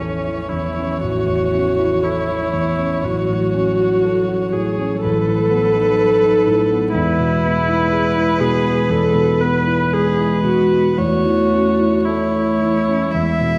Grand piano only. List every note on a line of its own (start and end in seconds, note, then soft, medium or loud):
0.00 0.99 A1 soft
0.00 0.52 E2 soft
0.00 0.78 C#4 soft
0.00 0.18 E4 soft
0.00 0.42 A4 soft
0.27 0.68 E4 soft
0.52 0.93 E2 soft
0.78 1.19 C#4 soft
1.02 3.01 A1 soft
1.27 1.69 E2 soft
1.54 1.95 C#4 soft
1.79 2.20 E4 soft
2.03 2.45 A4 soft
2.28 2.70 E4 soft
2.53 2.95 E2 soft
2.79 3.05 C#4 soft
3.03 4.97 A1 soft
3.29 3.70 A2 soft
3.54 3.95 C#4 soft
3.78 4.19 F#4 soft
4.04 4.44 A4 soft
4.28 4.68 F#4 soft
4.54 4.93 A2 soft
4.78 5.03 C#4 soft
5.04 6.91 A1 soft
5.27 5.66 A2 soft
5.50 5.89 B3 soft
5.75 6.13 D#4 soft
5.98 6.37 A4 soft
6.25 6.62 D#4 soft
6.47 6.85 A2 soft
6.71 6.95 B3 soft
6.94 8.86 E2 medium
7.20 7.58 B2 soft
7.44 7.82 B3 soft
7.69 8.07 E4 soft
7.92 8.31 G#4 soft
8.17 8.56 E4 soft
8.41 8.80 B2 soft
8.65 9.06 B3 soft
8.90 10.94 E2 soft
9.15 9.56 B2 soft
9.41 9.82 B3 soft
9.67 10.08 E4 soft
9.93 10.35 G#4 soft
10.19 10.61 E4 soft
10.44 10.87 B2 soft
10.72 10.99 B3 soft
10.98 13.08 E2 soft
11.25 11.69 E3 soft
11.53 11.96 C#4 soft
11.80 12.23 E4 soft
12.08 12.50 A4 soft
12.36 12.77 E4 soft
12.62 13.03 E3 soft
12.88 13.13 C#4 soft
13.14 13.59 E2 soft
13.41 13.59 B2 soft